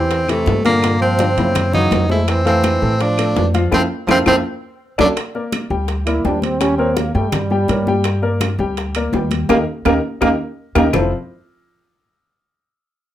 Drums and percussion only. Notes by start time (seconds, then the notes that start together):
0.10 high bongo, high conga, high timbale
0.28 high conga, high timbale, claves
0.46 high bongo, low bongo, high conga, low timbale
0.65 high conga, high timbale
0.82 high bongo, high conga, high timbale, claves
1.01 high bongo, high conga
1.19 high bongo, high conga, high timbale, low timbale
1.37 high conga, high timbale
1.55 high bongo, high conga, low conga, high timbale, claves
1.73 high bongo, high conga, low conga
1.91 high bongo, low bongo, high conga, high timbale, low timbale
2.09 high bongo, high conga
2.28 high bongo, high conga, high timbale, claves
2.46 high conga, high timbale
2.64 high bongo, high conga, high timbale, low timbale, claves
2.82 high conga
3.00 high bongo, high conga, high timbale
3.18 high conga, high timbale, claves
3.36 high bongo, low bongo, high conga, low timbale
3.54 high conga, high timbale
3.72 low bongo, high conga, high timbale, claves
4.08 low bongo, high conga, high timbale, claves
4.26 low bongo, high conga, high timbale, claves
4.99 low bongo, high conga, high timbale, claves
5.17 high bongo, high conga, high timbale, claves
5.35 high conga
5.52 high bongo, high conga, high timbale, claves
5.71 high bongo, high conga
5.88 high bongo, high conga, high timbale
6.07 high bongo, high conga, high timbale, claves
6.25 high bongo, low bongo, high conga, low timbale
6.42 high bongo, high conga, high timbale
6.61 high bongo, high conga, high timbale, claves
6.79 high conga
6.97 high bongo, high conga, high timbale
7.15 high bongo, high conga
7.32 high bongo, high conga, low conga, high timbale, claves
7.50 high bongo, high conga
7.68 high bongo, low bongo, high conga, high timbale
7.87 high bongo, high conga
8.04 high bongo, high timbale, claves
8.23 high conga
8.41 high bongo, high conga, high timbale, claves
8.58 high bongo, high conga
8.77 high bongo, high conga, high timbale
8.95 high bongo, high conga, high timbale, claves
9.13 high bongo, low bongo, high conga, low timbale
9.31 high bongo, high conga, high timbale
9.49 high bongo, high conga, high timbale, claves
9.85 high bongo, high conga, high timbale, claves
10.22 high bongo, high conga, high timbale, claves
10.75 high bongo, high conga, high timbale, claves
10.93 low bongo, low conga, low timbale, claves